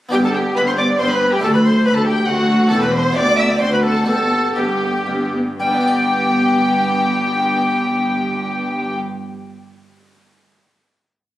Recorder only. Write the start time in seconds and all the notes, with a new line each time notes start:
0.13 G4
0.24 A4
0.35 G4
0.57 B4
0.68 C5
0.78 D5
1.00 C5
1.11 C5
1.16 B4
1.33 G4
1.44 A4
1.54 B4
1.65 C5
1.86 B4
1.96 A4
2.07 G4
2.28 F#4
2.71 A4
2.83 B4
2.93 C5
3.14 E5
3.18 D5
3.37 E5
3.49 D5
3.60 C5
3.72 B4
3.83 A4
4.07 A4
4.56 G4 A4
5.60 G5